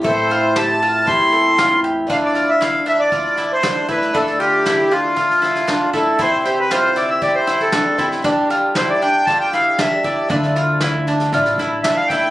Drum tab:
SD |----o-------o---|o-o-o-o-o-o-o-oo|ooo-o-o-ooooo-o-|o-o-o-o-o-ooo-oo|
BD |o-------o-------|o-------o-----o-|o-------o-----o-|o-------o-----o-|

SD |o-o-o-o-o-o-o-o-|ooo-o-ooooo-o-o-|
BD |o-------o-----o-|o-------o-----o-|